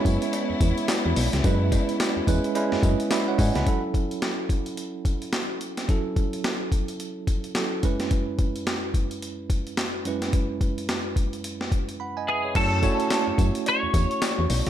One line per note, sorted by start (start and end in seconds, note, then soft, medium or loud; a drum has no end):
0.00 1.44 G#3 loud
0.00 3.62 B3 medium
0.00 1.44 C#4 medium
0.00 3.62 C#4 medium
0.00 1.45 E4 medium
0.00 3.63 E4 medium
0.00 1.45 B4 loud
0.00 0.49 C#5 loud
0.05 0.18 F#2 loud
0.05 kick medium
0.05 closed hi-hat medium
0.05 tambourine medium
0.22 closed hi-hat medium
0.33 closed hi-hat medium
0.33 cowbell medium
0.50 0.54 E2 soft
0.61 0.73 E2 loud
0.61 kick loud
0.61 closed hi-hat medium
0.61 tambourine medium
0.78 closed hi-hat medium
0.88 snare loud
0.88 clap loud
0.88 closed hi-hat medium
0.88 tambourine loud
0.88 cowbell medium
1.06 1.14 E2 medium
1.16 1.29 B1 loud
1.16 open hi-hat medium
1.16 tambourine medium
1.16 cowbell medium
1.33 1.41 C#2 medium
1.33 snare medium
1.33 closed hi-hat medium
1.44 1.77 F#2 loud
1.44 2.19 G#3 medium
1.44 2.19 C#4 medium
1.44 2.19 E4 medium
1.44 2.19 B4 medium
1.44 kick loud
1.44 closed hi-hat medium
1.44 tambourine medium
1.44 cowbell medium
1.72 kick loud
1.72 closed hi-hat medium
1.72 tambourine medium
1.72 cowbell medium
1.89 closed hi-hat medium
2.00 snare loud
2.00 clap medium
2.00 closed hi-hat medium
2.00 tambourine medium
2.00 cowbell medium
2.17 2.21 E2 soft
2.27 2.40 E2 medium
2.27 2.52 G#3 medium
2.27 2.53 C#4 medium
2.27 2.53 E4 medium
2.27 2.53 B4 loud
2.27 kick loud
2.27 closed hi-hat medium
2.27 tambourine medium
2.44 closed hi-hat medium
2.55 2.80 G#3 medium
2.55 2.80 C#4 medium
2.55 2.81 E4 medium
2.55 2.81 B4 loud
2.55 closed hi-hat medium
2.55 cowbell medium
2.72 2.77 F#2 soft
2.72 snare medium
2.83 2.95 F#2 loud
2.83 3.10 G#4 medium
2.83 3.10 D#5 medium
2.83 kick loud
2.83 closed hi-hat medium
2.83 tambourine medium
3.00 closed hi-hat medium
3.11 3.27 B4 medium
3.11 3.27 E5 medium
3.11 3.37 B5 medium
3.11 snare loud
3.11 clap medium
3.11 closed hi-hat medium
3.11 tambourine medium
3.11 cowbell medium
3.28 3.39 C#5 medium
3.28 3.38 F#5 medium
3.38 3.51 G#2 medium
3.38 3.55 D#5 medium
3.38 3.55 F#5 medium
3.38 3.55 G#5 medium
3.38 kick loud
3.38 open hi-hat medium
3.38 tambourine medium
3.38 cowbell medium
3.55 3.64 C#2 loud
3.55 3.82 F#5 medium
3.55 3.82 B5 medium
3.55 snare medium
3.55 closed hi-hat medium
3.66 5.84 F#3 medium
3.66 5.85 C#4 medium
3.66 5.85 E4 medium
3.66 5.86 A4 medium
3.66 kick loud
3.66 closed hi-hat medium
3.94 kick medium
3.94 closed hi-hat medium
4.11 closed hi-hat medium
4.22 snare loud
4.22 clap medium
4.22 closed hi-hat medium
4.49 kick medium
4.49 closed hi-hat medium
4.66 closed hi-hat soft
4.77 closed hi-hat medium
5.05 kick medium
5.05 closed hi-hat medium
5.22 closed hi-hat soft
5.33 snare loud
5.33 clap medium
5.33 closed hi-hat medium
5.61 closed hi-hat medium
5.77 snare medium
5.77 closed hi-hat medium
5.88 7.52 F#3 medium
5.88 7.52 C#4 medium
5.88 7.52 E4 medium
5.88 7.53 A4 medium
5.88 kick loud
5.88 closed hi-hat medium
6.16 kick medium
6.16 closed hi-hat medium
6.33 closed hi-hat soft
6.44 snare loud
6.44 clap medium
6.44 closed hi-hat medium
6.72 kick medium
6.72 closed hi-hat medium
6.88 closed hi-hat medium
7.00 closed hi-hat medium
7.27 kick medium
7.27 closed hi-hat medium
7.44 closed hi-hat soft
7.55 7.83 F#3 medium
7.55 7.82 C#4 medium
7.55 7.83 E4 soft
7.55 7.84 A4 medium
7.55 snare loud
7.55 clap medium
7.55 closed hi-hat medium
7.83 10.01 F#2 medium
7.83 10.01 G#3 medium
7.83 10.02 C#4 medium
7.83 10.02 E4 medium
7.83 10.02 B4 medium
7.83 kick medium
7.83 closed hi-hat medium
8.00 snare medium
8.00 closed hi-hat medium
8.11 kick loud
8.11 closed hi-hat medium
8.39 kick loud
8.39 closed hi-hat medium
8.56 closed hi-hat medium
8.67 snare loud
8.67 clap medium
8.67 closed hi-hat medium
8.94 kick medium
8.94 closed hi-hat medium
9.11 closed hi-hat medium
9.22 closed hi-hat medium
9.50 kick medium
9.50 closed hi-hat medium
9.67 closed hi-hat soft
9.77 snare loud
9.77 clap medium
9.77 closed hi-hat medium
10.05 12.23 F#2 medium
10.05 12.24 G#3 medium
10.05 12.24 C#4 medium
10.05 12.24 E4 medium
10.05 11.97 B4 medium
10.05 closed hi-hat medium
10.22 snare medium
10.22 closed hi-hat medium
10.33 kick loud
10.33 closed hi-hat medium
10.61 kick medium
10.61 closed hi-hat medium
10.78 closed hi-hat soft
10.89 snare loud
10.89 clap medium
10.89 closed hi-hat medium
11.16 kick medium
11.16 closed hi-hat medium
11.33 closed hi-hat medium
11.44 closed hi-hat medium
11.61 snare medium
11.72 kick medium
11.72 closed hi-hat medium
11.89 closed hi-hat soft
12.00 12.16 F#5 soft
12.00 12.16 B5 medium
12.17 12.27 D#5 medium
12.17 12.27 G#5 medium
12.28 12.54 G#4 medium
12.28 12.44 B4 medium
12.28 12.44 E5 medium
12.44 12.71 G#4 medium
12.44 12.55 C#5 medium
12.55 12.88 F#2 loud
12.55 12.80 A3 medium
12.55 12.80 C#4 medium
12.55 12.80 E4 medium
12.55 12.80 F#4 medium
12.55 13.68 A4 loud
12.55 12.81 C#5 medium
12.55 kick loud
12.55 closed hi-hat medium
12.55 crash loud
12.55 tambourine medium
12.55 cowbell medium
12.82 13.82 A3 medium
12.82 13.82 C#4 medium
12.82 13.82 E4 medium
12.82 13.82 F#4 medium
12.82 13.82 C#5 medium
12.82 kick loud
12.82 closed hi-hat medium
12.82 tambourine medium
12.82 cowbell medium
13.00 closed hi-hat medium
13.10 snare loud
13.10 clap medium
13.10 closed hi-hat medium
13.10 tambourine loud
13.10 cowbell medium
13.28 13.32 F#2 soft
13.38 13.51 F#2 loud
13.38 kick medium
13.38 closed hi-hat medium
13.38 tambourine medium
13.55 closed hi-hat medium
13.66 14.70 C#5 loud
13.66 closed hi-hat medium
13.66 cowbell medium
13.83 13.88 E2 medium
13.94 14.06 E2 medium
13.94 kick loud
13.94 closed hi-hat medium
13.94 tambourine medium
14.11 closed hi-hat soft
14.22 snare loud
14.22 clap medium
14.22 closed hi-hat medium
14.22 tambourine loud
14.22 cowbell medium
14.39 14.47 E2 medium
14.50 14.62 B1 loud
14.50 open hi-hat medium
14.50 tambourine medium
14.50 cowbell medium
14.66 14.70 C#2 loud
14.66 snare medium
14.66 closed hi-hat medium